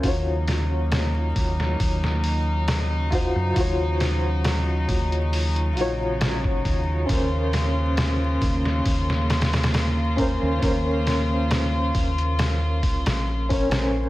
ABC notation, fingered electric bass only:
X:1
M:4/4
L:1/16
Q:1/4=68
K:Ebdor
V:1 name="Fingered electric bass" clef=bass
E,,6 E,,2 E,,6- E,, G,, | E,,6 E,,4 B,,,4 E,,2 | E,,6 E,,2 E,,6- E,, E,, | E,,6 E,,4 D,, B,,,4- B,,, |]